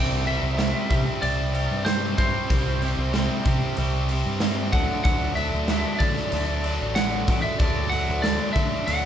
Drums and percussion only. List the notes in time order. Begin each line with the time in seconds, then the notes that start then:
0.27 open hi-hat
0.59 snare, open hi-hat
0.91 kick, open hi-hat
1.23 open hi-hat
1.55 open hi-hat
1.86 snare, open hi-hat
2.18 kick, open hi-hat
2.50 kick, open hi-hat
2.82 open hi-hat
3.14 snare, open hi-hat
3.45 kick, open hi-hat
3.77 open hi-hat
4.09 open hi-hat
4.40 snare, open hi-hat
4.73 kick, open hi-hat
5.05 kick, open hi-hat
5.37 open hi-hat
5.68 snare, open hi-hat
6.00 kick, open hi-hat
6.16 snare
6.32 open hi-hat
6.64 open hi-hat
6.96 snare, open hi-hat
7.28 kick, open hi-hat
7.59 kick, open hi-hat
7.92 open hi-hat
8.24 snare, open hi-hat
8.56 kick, open hi-hat
8.88 open hi-hat